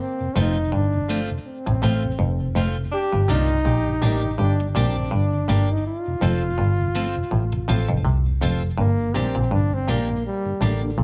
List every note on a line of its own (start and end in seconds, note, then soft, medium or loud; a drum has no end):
0.01 0.38 C4 loud
0.20 0.29 F2 medium
0.20 0.29 C3 medium
0.35 0.70 F1 loud
0.35 0.58 F2 medium
0.35 0.48 F3 medium
0.35 0.47 A3 medium
0.35 0.56 A3 medium
0.35 0.48 C4 medium
0.35 0.56 C4 medium
0.35 0.76 D#4 medium
0.35 0.54 F4 medium
0.35 0.56 F4 loud
0.35 0.54 A4 medium
0.35 0.54 C5 loud
0.57 0.66 F2 medium
0.57 0.66 C3 medium
0.72 1.26 G1 medium
0.72 0.94 G2 medium
0.72 1.21 D4 medium
0.94 1.03 F2 medium
0.94 1.02 C3 medium
1.08 1.21 F3 medium
1.08 1.29 A3 medium
1.08 1.21 A3 medium
1.08 1.29 C4 medium
1.08 1.21 C4 medium
1.08 1.27 F4 medium
1.08 1.30 F4 medium
1.08 1.27 A4 medium
1.08 1.28 C5 loud
1.30 1.39 F2 medium
1.30 1.39 C3 medium
1.47 2.52 C4 medium
1.66 1.81 A1 medium
1.66 1.76 F2 medium
1.66 1.76 A2 medium
1.66 1.76 C3 medium
1.66 muted clean electric guitar stroke soft
1.82 2.17 A1 medium
1.82 2.04 A2 medium
1.82 1.94 F3 medium
1.82 2.02 A3 medium
1.82 1.94 A3 medium
1.82 2.03 C4 medium
1.82 1.95 C4 medium
1.82 2.00 F4 medium
1.82 2.03 F4 medium
1.82 2.01 A4 medium
1.82 2.01 C5 loud
2.03 2.12 F2 medium
2.03 2.12 C3 medium
2.03 2.09 A4 soft
2.03 2.10 C5 soft
2.19 2.53 F1 medium
2.19 2.41 F2 medium
2.40 2.49 F2 medium
2.40 2.49 C3 medium
2.40 2.46 A4 soft
2.40 2.46 C5 soft
2.55 2.75 F1 medium
2.55 2.68 F2 medium
2.55 2.67 F3 medium
2.55 2.76 A3 medium
2.55 2.68 A3 medium
2.55 2.68 C4 medium
2.55 2.76 C4 medium
2.55 2.74 F4 medium
2.55 2.76 F4 medium
2.55 2.74 A4 medium
2.55 2.74 C5 medium
2.77 2.86 F2 soft
2.77 2.86 C3 soft
2.92 3.21 D4 loud
2.92 3.27 G4 loud
3.12 3.28 G1 medium
3.12 3.22 G2 medium
3.12 3.22 D3 medium
3.28 3.63 C2 medium
3.28 3.50 C3 medium
3.28 3.41 G3 medium
3.28 3.49 A#3 medium
3.28 3.41 A#3 medium
3.28 3.49 D4 medium
3.28 3.41 D4 medium
3.28 4.36 D#4 loud
3.28 3.58 F4 loud
3.28 3.47 G4 medium
3.28 3.49 G4 medium
3.28 3.47 A#4 medium
3.28 3.47 D5 loud
3.50 3.59 G2 medium
3.50 3.59 D3 medium
3.65 4.00 A#1 medium
3.65 3.87 A#2 medium
3.65 3.94 G4 loud
3.87 3.95 G2 medium
3.87 3.95 D3 medium
4.01 4.36 A1 medium
4.01 4.24 A2 medium
4.01 4.14 G3 medium
4.01 4.22 A#3 medium
4.01 4.14 A#3 medium
4.01 4.22 D4 medium
4.01 4.14 D4 medium
4.01 4.31 G4 medium
4.01 4.20 G4 medium
4.01 4.23 G4 medium
4.01 4.20 A#4 medium
4.01 4.21 D5 medium
4.24 4.32 G2 medium
4.24 4.32 D3 medium
4.38 4.73 G1 medium
4.38 4.60 G2 medium
4.38 4.71 D4 loud
4.38 4.55 G4 loud
4.60 4.69 G2 medium
4.60 4.69 D3 medium
4.60 muted clean electric guitar stroke soft
4.71 4.87 A#2 medium
4.71 4.79 D4 medium
4.71 5.44 D4 loud
4.71 4.93 G4 medium
4.75 4.95 A#1 medium
4.75 4.87 G3 medium
4.75 4.95 A#3 medium
4.75 4.87 A#3 medium
4.75 5.15 C4 medium
4.75 4.96 D4 medium
4.75 4.87 D4 medium
4.75 4.96 G4 loud
4.75 4.94 A#4 medium
4.75 4.94 D5 loud
4.96 5.05 G2 medium
4.96 5.06 D3 medium
4.96 5.02 A#4 soft
4.96 5.02 D5 soft
5.11 5.46 G1 medium
5.11 5.33 G2 medium
5.11 5.73 D4 medium
5.34 5.42 G2 medium
5.34 5.42 D3 medium
5.48 5.68 G1 medium
5.48 5.61 G2 medium
5.48 5.61 G3 medium
5.48 5.69 A#3 medium
5.48 5.61 A#3 medium
5.48 5.69 D4 medium
5.48 5.61 D4 medium
5.48 5.67 G4 medium
5.48 5.69 G4 medium
5.48 5.67 A#4 medium
5.48 5.67 D5 medium
5.71 5.79 G2 medium
5.71 5.79 D3 medium
5.71 5.86 D#4 medium
5.87 8.02 F4 loud
6.07 6.16 F2 medium
6.07 6.16 C3 medium
6.21 6.56 F1 medium
6.21 6.43 F2 medium
6.21 6.34 F3 medium
6.21 6.34 A3 medium
6.21 6.42 C4 medium
6.21 6.34 C4 medium
6.21 6.40 F4 medium
6.21 6.42 F4 medium
6.21 6.40 A4 medium
6.21 6.42 A4 medium
6.21 6.40 C5 loud
6.43 6.52 F2 medium
6.43 6.52 C3 medium
6.58 7.12 G1 medium
6.58 6.80 G2 medium
6.80 6.89 F2 medium
6.80 6.89 C3 medium
6.95 7.07 F3 medium
6.95 7.07 A3 medium
6.95 7.15 C4 medium
6.95 7.07 C4 medium
6.95 7.13 F4 medium
6.95 7.15 F4 loud
6.95 7.13 A4 medium
6.95 7.15 A4 medium
6.95 7.14 C5 loud
7.16 7.25 F2 medium
7.16 7.25 C3 medium
7.31 7.51 A1 medium
7.31 7.44 A2 medium
7.53 7.61 F2 medium
7.53 7.61 C3 medium
7.53 muted clean electric guitar stroke soft
7.68 7.88 A1 loud
7.68 7.80 A2 medium
7.68 7.80 F3 medium
7.68 7.80 A3 medium
7.68 7.88 C4 medium
7.68 7.80 C4 medium
7.68 7.86 F4 medium
7.68 7.89 F4 loud
7.68 7.87 A4 medium
7.68 7.89 A4 medium
7.68 7.87 C5 loud
7.89 8.04 F1 medium
7.89 7.98 F2 medium
7.89 7.98 C3 medium
7.89 7.95 A4 soft
7.89 7.95 C5 soft
8.05 8.39 C2 loud
8.05 8.27 C3 medium
8.26 8.35 F2 medium
8.26 8.35 C3 medium
8.41 8.76 F1 medium
8.41 8.63 F2 medium
8.41 8.53 F3 medium
8.41 8.53 A3 medium
8.41 8.53 C4 medium
8.41 8.62 C4 medium
8.41 8.59 F4 medium
8.41 8.62 F4 medium
8.41 8.60 A4 medium
8.41 8.62 A4 loud
8.41 8.60 C5 loud
8.62 8.71 F2 medium
8.62 8.71 C3 medium
8.78 8.98 G1 loud
8.78 8.90 G2 medium
8.78 9.18 A#3 loud
8.99 9.08 G2 medium
8.99 9.08 D3 medium
9.14 9.34 A#1 medium
9.14 9.27 A#2 medium
9.14 9.26 G3 medium
9.14 9.26 A#3 medium
9.14 9.35 A#3 medium
9.14 9.55 C4 loud
9.14 9.26 D4 medium
9.14 9.35 D4 medium
9.14 9.33 G4 medium
9.14 9.35 G4 loud
9.14 9.33 A#4 medium
9.14 9.33 D5 medium
9.34 9.50 A#1 medium
9.34 9.44 G2 medium
9.34 9.45 A#2 medium
9.34 9.44 D3 medium
9.51 9.86 G1 medium
9.51 9.73 G2 medium
9.51 9.76 D4 loud
9.72 9.81 G2 medium
9.72 9.81 D3 medium
9.72 9.92 C4 loud
9.87 10.22 A#1 medium
9.87 10.10 A#2 medium
9.87 9.99 G3 medium
9.87 10.00 A#3 medium
9.87 10.08 A#3 medium
9.87 10.26 A#3 loud
9.87 10.00 D4 medium
9.87 10.08 D4 medium
9.87 10.06 G4 medium
9.87 10.09 G4 medium
9.87 10.06 A#4 medium
9.87 10.07 D5 medium
10.09 10.18 G2 medium
10.09 10.18 D3 medium
10.09 10.15 A#4 soft
10.09 10.15 D5 soft
10.27 10.65 G3 loud
10.45 10.54 G2 medium
10.45 10.54 D3 medium
10.61 10.95 A1 medium
10.61 10.83 A2 medium
10.61 11.04 D3 medium
10.61 10.73 G3 medium
10.61 10.81 A#3 medium
10.61 10.73 A#3 medium
10.61 10.82 D4 medium
10.61 10.73 D4 medium
10.61 10.79 G4 medium
10.61 10.82 G4 medium
10.61 10.80 A#4 medium
10.61 10.80 D5 loud
10.82 10.91 A#3 medium
10.82 10.91 D4 medium
10.82 10.88 D5 soft
10.98 11.04 A#1 loud
10.98 11.04 A#2 medium